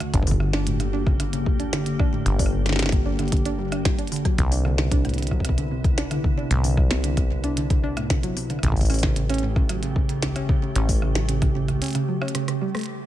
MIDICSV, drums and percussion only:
0, 0, Header, 1, 2, 480
1, 0, Start_track
1, 0, Tempo, 530973
1, 123, Time_signature, 4, 2, 24, 8
1, 11806, End_track
2, 0, Start_track
2, 0, Title_t, "Drums"
2, 3, Note_on_c, 9, 37, 61
2, 3, Note_on_c, 9, 42, 38
2, 94, Note_off_c, 9, 37, 0
2, 94, Note_off_c, 9, 42, 0
2, 123, Note_on_c, 9, 36, 116
2, 123, Note_on_c, 9, 42, 78
2, 203, Note_off_c, 9, 36, 0
2, 203, Note_on_c, 9, 36, 96
2, 214, Note_off_c, 9, 42, 0
2, 243, Note_on_c, 9, 46, 76
2, 283, Note_off_c, 9, 36, 0
2, 283, Note_on_c, 9, 36, 83
2, 334, Note_off_c, 9, 46, 0
2, 363, Note_on_c, 9, 37, 50
2, 374, Note_off_c, 9, 36, 0
2, 453, Note_off_c, 9, 37, 0
2, 483, Note_on_c, 9, 38, 127
2, 573, Note_off_c, 9, 38, 0
2, 603, Note_on_c, 9, 42, 80
2, 693, Note_off_c, 9, 42, 0
2, 723, Note_on_c, 9, 37, 36
2, 723, Note_on_c, 9, 42, 56
2, 813, Note_off_c, 9, 37, 0
2, 813, Note_off_c, 9, 42, 0
2, 963, Note_on_c, 9, 36, 123
2, 963, Note_on_c, 9, 37, 36
2, 1054, Note_off_c, 9, 36, 0
2, 1054, Note_off_c, 9, 37, 0
2, 1083, Note_on_c, 9, 37, 49
2, 1083, Note_on_c, 9, 42, 76
2, 1173, Note_off_c, 9, 37, 0
2, 1173, Note_off_c, 9, 42, 0
2, 1203, Note_on_c, 9, 42, 56
2, 1294, Note_off_c, 9, 42, 0
2, 1323, Note_on_c, 9, 36, 108
2, 1414, Note_off_c, 9, 36, 0
2, 1443, Note_on_c, 9, 42, 35
2, 1534, Note_off_c, 9, 42, 0
2, 1563, Note_on_c, 9, 38, 124
2, 1563, Note_on_c, 9, 42, 81
2, 1654, Note_off_c, 9, 38, 0
2, 1654, Note_off_c, 9, 42, 0
2, 1683, Note_on_c, 9, 42, 54
2, 1774, Note_off_c, 9, 42, 0
2, 1803, Note_on_c, 9, 36, 123
2, 1803, Note_on_c, 9, 37, 52
2, 1894, Note_off_c, 9, 36, 0
2, 1894, Note_off_c, 9, 37, 0
2, 2043, Note_on_c, 9, 42, 77
2, 2134, Note_off_c, 9, 42, 0
2, 2163, Note_on_c, 9, 36, 110
2, 2163, Note_on_c, 9, 46, 78
2, 2223, Note_on_c, 9, 37, 51
2, 2254, Note_off_c, 9, 36, 0
2, 2254, Note_off_c, 9, 46, 0
2, 2314, Note_off_c, 9, 37, 0
2, 2403, Note_on_c, 9, 38, 57
2, 2403, Note_on_c, 9, 42, 37
2, 2433, Note_off_c, 9, 38, 0
2, 2433, Note_on_c, 9, 38, 66
2, 2464, Note_off_c, 9, 38, 0
2, 2464, Note_on_c, 9, 38, 75
2, 2493, Note_off_c, 9, 38, 0
2, 2493, Note_on_c, 9, 38, 81
2, 2494, Note_off_c, 9, 42, 0
2, 2524, Note_off_c, 9, 38, 0
2, 2524, Note_on_c, 9, 38, 86
2, 2524, Note_on_c, 9, 42, 78
2, 2554, Note_off_c, 9, 38, 0
2, 2554, Note_on_c, 9, 38, 92
2, 2583, Note_off_c, 9, 38, 0
2, 2583, Note_on_c, 9, 38, 98
2, 2613, Note_off_c, 9, 38, 0
2, 2613, Note_on_c, 9, 38, 109
2, 2614, Note_off_c, 9, 42, 0
2, 2643, Note_on_c, 9, 36, 119
2, 2643, Note_on_c, 9, 42, 52
2, 2704, Note_off_c, 9, 38, 0
2, 2734, Note_off_c, 9, 36, 0
2, 2734, Note_off_c, 9, 42, 0
2, 2883, Note_on_c, 9, 37, 34
2, 2883, Note_on_c, 9, 42, 34
2, 2964, Note_off_c, 9, 42, 0
2, 2964, Note_on_c, 9, 42, 27
2, 2974, Note_off_c, 9, 37, 0
2, 3003, Note_off_c, 9, 42, 0
2, 3003, Note_on_c, 9, 36, 112
2, 3003, Note_on_c, 9, 42, 74
2, 3043, Note_off_c, 9, 42, 0
2, 3043, Note_on_c, 9, 42, 22
2, 3094, Note_off_c, 9, 36, 0
2, 3124, Note_off_c, 9, 42, 0
2, 3124, Note_on_c, 9, 42, 54
2, 3214, Note_off_c, 9, 42, 0
2, 3364, Note_on_c, 9, 37, 72
2, 3364, Note_on_c, 9, 42, 36
2, 3454, Note_off_c, 9, 37, 0
2, 3454, Note_off_c, 9, 42, 0
2, 3483, Note_on_c, 9, 36, 125
2, 3483, Note_on_c, 9, 38, 122
2, 3483, Note_on_c, 9, 42, 77
2, 3574, Note_off_c, 9, 36, 0
2, 3574, Note_off_c, 9, 38, 0
2, 3574, Note_off_c, 9, 42, 0
2, 3603, Note_on_c, 9, 42, 48
2, 3683, Note_off_c, 9, 42, 0
2, 3683, Note_on_c, 9, 42, 40
2, 3723, Note_on_c, 9, 46, 76
2, 3764, Note_off_c, 9, 42, 0
2, 3764, Note_on_c, 9, 42, 33
2, 3814, Note_off_c, 9, 46, 0
2, 3843, Note_off_c, 9, 42, 0
2, 3843, Note_on_c, 9, 36, 104
2, 3843, Note_on_c, 9, 37, 58
2, 3843, Note_on_c, 9, 42, 36
2, 3934, Note_off_c, 9, 36, 0
2, 3934, Note_off_c, 9, 37, 0
2, 3934, Note_off_c, 9, 42, 0
2, 3963, Note_on_c, 9, 36, 107
2, 3963, Note_on_c, 9, 42, 73
2, 4054, Note_off_c, 9, 36, 0
2, 4054, Note_off_c, 9, 42, 0
2, 4083, Note_on_c, 9, 46, 81
2, 4174, Note_off_c, 9, 46, 0
2, 4203, Note_on_c, 9, 37, 49
2, 4294, Note_off_c, 9, 37, 0
2, 4323, Note_on_c, 9, 38, 125
2, 4414, Note_off_c, 9, 38, 0
2, 4443, Note_on_c, 9, 36, 116
2, 4444, Note_on_c, 9, 42, 76
2, 4534, Note_off_c, 9, 36, 0
2, 4534, Note_off_c, 9, 42, 0
2, 4563, Note_on_c, 9, 37, 36
2, 4563, Note_on_c, 9, 42, 23
2, 4604, Note_off_c, 9, 42, 0
2, 4604, Note_on_c, 9, 42, 27
2, 4644, Note_off_c, 9, 42, 0
2, 4644, Note_on_c, 9, 42, 31
2, 4654, Note_off_c, 9, 37, 0
2, 4684, Note_off_c, 9, 42, 0
2, 4684, Note_on_c, 9, 42, 35
2, 4724, Note_off_c, 9, 42, 0
2, 4724, Note_on_c, 9, 42, 40
2, 4764, Note_off_c, 9, 42, 0
2, 4764, Note_on_c, 9, 42, 44
2, 4803, Note_on_c, 9, 36, 46
2, 4803, Note_on_c, 9, 37, 35
2, 4854, Note_off_c, 9, 42, 0
2, 4883, Note_off_c, 9, 36, 0
2, 4883, Note_on_c, 9, 36, 64
2, 4894, Note_off_c, 9, 37, 0
2, 4924, Note_on_c, 9, 37, 50
2, 4924, Note_on_c, 9, 42, 72
2, 4963, Note_off_c, 9, 36, 0
2, 4963, Note_on_c, 9, 36, 83
2, 5014, Note_off_c, 9, 37, 0
2, 5014, Note_off_c, 9, 42, 0
2, 5044, Note_on_c, 9, 42, 51
2, 5054, Note_off_c, 9, 36, 0
2, 5134, Note_off_c, 9, 42, 0
2, 5283, Note_on_c, 9, 36, 120
2, 5284, Note_on_c, 9, 42, 34
2, 5374, Note_off_c, 9, 36, 0
2, 5374, Note_off_c, 9, 42, 0
2, 5404, Note_on_c, 9, 38, 120
2, 5404, Note_on_c, 9, 42, 75
2, 5494, Note_off_c, 9, 38, 0
2, 5494, Note_off_c, 9, 42, 0
2, 5524, Note_on_c, 9, 37, 50
2, 5524, Note_on_c, 9, 42, 49
2, 5614, Note_off_c, 9, 37, 0
2, 5614, Note_off_c, 9, 42, 0
2, 5643, Note_on_c, 9, 36, 108
2, 5734, Note_off_c, 9, 36, 0
2, 5883, Note_on_c, 9, 42, 72
2, 5974, Note_off_c, 9, 42, 0
2, 6003, Note_on_c, 9, 46, 83
2, 6094, Note_off_c, 9, 46, 0
2, 6123, Note_on_c, 9, 36, 113
2, 6123, Note_on_c, 9, 37, 52
2, 6214, Note_off_c, 9, 36, 0
2, 6214, Note_off_c, 9, 37, 0
2, 6243, Note_on_c, 9, 38, 116
2, 6243, Note_on_c, 9, 42, 37
2, 6334, Note_off_c, 9, 38, 0
2, 6334, Note_off_c, 9, 42, 0
2, 6363, Note_on_c, 9, 42, 73
2, 6454, Note_off_c, 9, 42, 0
2, 6483, Note_on_c, 9, 36, 101
2, 6483, Note_on_c, 9, 37, 37
2, 6483, Note_on_c, 9, 42, 52
2, 6574, Note_off_c, 9, 36, 0
2, 6574, Note_off_c, 9, 37, 0
2, 6574, Note_off_c, 9, 42, 0
2, 6723, Note_on_c, 9, 37, 36
2, 6723, Note_on_c, 9, 42, 34
2, 6814, Note_off_c, 9, 37, 0
2, 6814, Note_off_c, 9, 42, 0
2, 6843, Note_on_c, 9, 42, 73
2, 6934, Note_off_c, 9, 42, 0
2, 6963, Note_on_c, 9, 36, 115
2, 6963, Note_on_c, 9, 42, 51
2, 7054, Note_off_c, 9, 36, 0
2, 7054, Note_off_c, 9, 42, 0
2, 7204, Note_on_c, 9, 37, 76
2, 7204, Note_on_c, 9, 42, 35
2, 7294, Note_off_c, 9, 37, 0
2, 7294, Note_off_c, 9, 42, 0
2, 7323, Note_on_c, 9, 36, 107
2, 7323, Note_on_c, 9, 38, 115
2, 7323, Note_on_c, 9, 42, 76
2, 7414, Note_off_c, 9, 36, 0
2, 7414, Note_off_c, 9, 38, 0
2, 7414, Note_off_c, 9, 42, 0
2, 7444, Note_on_c, 9, 42, 51
2, 7534, Note_off_c, 9, 42, 0
2, 7564, Note_on_c, 9, 46, 84
2, 7654, Note_off_c, 9, 46, 0
2, 7683, Note_on_c, 9, 37, 28
2, 7683, Note_on_c, 9, 42, 34
2, 7763, Note_off_c, 9, 37, 0
2, 7763, Note_on_c, 9, 37, 36
2, 7774, Note_off_c, 9, 42, 0
2, 7803, Note_on_c, 9, 36, 105
2, 7803, Note_on_c, 9, 42, 76
2, 7843, Note_off_c, 9, 37, 0
2, 7843, Note_on_c, 9, 37, 46
2, 7883, Note_off_c, 9, 36, 0
2, 7883, Note_on_c, 9, 36, 87
2, 7894, Note_off_c, 9, 42, 0
2, 7923, Note_on_c, 9, 46, 38
2, 7934, Note_off_c, 9, 37, 0
2, 7963, Note_off_c, 9, 36, 0
2, 7963, Note_off_c, 9, 46, 0
2, 7963, Note_on_c, 9, 36, 74
2, 7963, Note_on_c, 9, 46, 45
2, 8003, Note_off_c, 9, 46, 0
2, 8003, Note_on_c, 9, 46, 52
2, 8043, Note_off_c, 9, 46, 0
2, 8043, Note_on_c, 9, 37, 54
2, 8043, Note_on_c, 9, 46, 57
2, 8054, Note_off_c, 9, 36, 0
2, 8083, Note_off_c, 9, 46, 0
2, 8083, Note_on_c, 9, 46, 64
2, 8123, Note_off_c, 9, 46, 0
2, 8123, Note_on_c, 9, 46, 72
2, 8134, Note_off_c, 9, 37, 0
2, 8163, Note_on_c, 9, 36, 104
2, 8163, Note_on_c, 9, 38, 117
2, 8214, Note_off_c, 9, 46, 0
2, 8254, Note_off_c, 9, 36, 0
2, 8254, Note_off_c, 9, 38, 0
2, 8283, Note_on_c, 9, 42, 79
2, 8373, Note_off_c, 9, 42, 0
2, 8403, Note_on_c, 9, 37, 39
2, 8403, Note_on_c, 9, 42, 50
2, 8444, Note_off_c, 9, 42, 0
2, 8444, Note_on_c, 9, 42, 42
2, 8484, Note_off_c, 9, 42, 0
2, 8484, Note_on_c, 9, 42, 34
2, 8494, Note_off_c, 9, 37, 0
2, 8574, Note_off_c, 9, 42, 0
2, 8643, Note_on_c, 9, 36, 111
2, 8643, Note_on_c, 9, 37, 37
2, 8734, Note_off_c, 9, 36, 0
2, 8734, Note_off_c, 9, 37, 0
2, 8763, Note_on_c, 9, 37, 54
2, 8763, Note_on_c, 9, 42, 78
2, 8854, Note_off_c, 9, 37, 0
2, 8854, Note_off_c, 9, 42, 0
2, 8883, Note_on_c, 9, 42, 53
2, 8974, Note_off_c, 9, 42, 0
2, 9003, Note_on_c, 9, 36, 101
2, 9094, Note_off_c, 9, 36, 0
2, 9123, Note_on_c, 9, 42, 36
2, 9214, Note_off_c, 9, 42, 0
2, 9243, Note_on_c, 9, 38, 113
2, 9243, Note_on_c, 9, 42, 78
2, 9334, Note_off_c, 9, 38, 0
2, 9334, Note_off_c, 9, 42, 0
2, 9363, Note_on_c, 9, 37, 53
2, 9363, Note_on_c, 9, 42, 52
2, 9454, Note_off_c, 9, 37, 0
2, 9454, Note_off_c, 9, 42, 0
2, 9483, Note_on_c, 9, 36, 118
2, 9574, Note_off_c, 9, 36, 0
2, 9723, Note_on_c, 9, 42, 81
2, 9814, Note_off_c, 9, 42, 0
2, 9843, Note_on_c, 9, 36, 103
2, 9843, Note_on_c, 9, 46, 83
2, 9934, Note_off_c, 9, 36, 0
2, 9934, Note_off_c, 9, 46, 0
2, 9963, Note_on_c, 9, 37, 54
2, 10054, Note_off_c, 9, 37, 0
2, 10083, Note_on_c, 9, 38, 120
2, 10083, Note_on_c, 9, 42, 41
2, 10174, Note_off_c, 9, 38, 0
2, 10174, Note_off_c, 9, 42, 0
2, 10203, Note_on_c, 9, 42, 82
2, 10293, Note_off_c, 9, 42, 0
2, 10323, Note_on_c, 9, 36, 115
2, 10323, Note_on_c, 9, 37, 39
2, 10323, Note_on_c, 9, 42, 54
2, 10413, Note_off_c, 9, 36, 0
2, 10413, Note_off_c, 9, 37, 0
2, 10413, Note_off_c, 9, 42, 0
2, 10563, Note_on_c, 9, 37, 39
2, 10563, Note_on_c, 9, 42, 36
2, 10653, Note_off_c, 9, 37, 0
2, 10653, Note_off_c, 9, 42, 0
2, 10683, Note_on_c, 9, 42, 73
2, 10703, Note_off_c, 9, 42, 0
2, 10703, Note_on_c, 9, 42, 62
2, 10743, Note_off_c, 9, 42, 0
2, 10743, Note_on_c, 9, 42, 41
2, 10762, Note_off_c, 9, 42, 0
2, 10762, Note_on_c, 9, 42, 34
2, 10783, Note_off_c, 9, 42, 0
2, 10783, Note_on_c, 9, 42, 28
2, 10803, Note_off_c, 9, 42, 0
2, 10803, Note_on_c, 9, 37, 40
2, 10803, Note_on_c, 9, 42, 56
2, 10893, Note_off_c, 9, 37, 0
2, 10893, Note_off_c, 9, 42, 0
2, 11043, Note_on_c, 9, 37, 82
2, 11103, Note_on_c, 9, 42, 37
2, 11133, Note_off_c, 9, 37, 0
2, 11163, Note_off_c, 9, 42, 0
2, 11163, Note_on_c, 9, 37, 62
2, 11163, Note_on_c, 9, 42, 82
2, 11253, Note_off_c, 9, 37, 0
2, 11253, Note_off_c, 9, 42, 0
2, 11283, Note_on_c, 9, 37, 64
2, 11283, Note_on_c, 9, 42, 55
2, 11373, Note_off_c, 9, 37, 0
2, 11373, Note_off_c, 9, 42, 0
2, 11523, Note_on_c, 9, 37, 84
2, 11523, Note_on_c, 9, 42, 17
2, 11543, Note_off_c, 9, 42, 0
2, 11543, Note_on_c, 9, 42, 20
2, 11563, Note_off_c, 9, 42, 0
2, 11563, Note_on_c, 9, 42, 23
2, 11583, Note_off_c, 9, 42, 0
2, 11583, Note_on_c, 9, 42, 27
2, 11602, Note_off_c, 9, 42, 0
2, 11602, Note_on_c, 9, 42, 29
2, 11613, Note_off_c, 9, 37, 0
2, 11622, Note_off_c, 9, 42, 0
2, 11622, Note_on_c, 9, 42, 31
2, 11713, Note_off_c, 9, 42, 0
2, 11806, End_track
0, 0, End_of_file